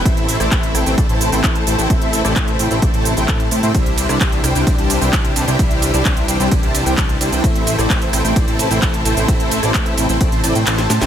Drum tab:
RD |----------------|----------------|x-x-x-x-x-x-x-x-|x-x-x-x-x-x-x-x-|
HH |xxoxxxoxxxooxxox|xxoxxxoxxxoxxxox|xxoxxxoxxxooxxox|xxoxxxoxxxoxxxox|
SH |x-xxx-xxx-xxx-xx|x-xxx-xxx-xxx-xx|x-xxx-xxx-xxx-xx|x-xxx-xxx-xxx-xx|
CP |----x-------x---|----x-------x---|----x-------x---|----x-------x---|
SD |---r--r---------|---r------------|---r--r---------|----------------|
BD |o---o---o---o---|o---o---o---o---|o---o---o---o---|o---o---o---o---|

RD |x-x-x-x-x-x-x-x-|x-x-x-x-x-x-x-x-|
HH |xxoxxxoxxxooxxox|xxoxxxoxxxoxxxox|
SH |x-xxx-xxx-xxx-xx|x-xxx-xxx-xxx-xx|
CP |----x-------x---|----x-------x---|
SD |---r--r---------|---r---------ooo|
BD |o---o---o---o---|o---o---o-------|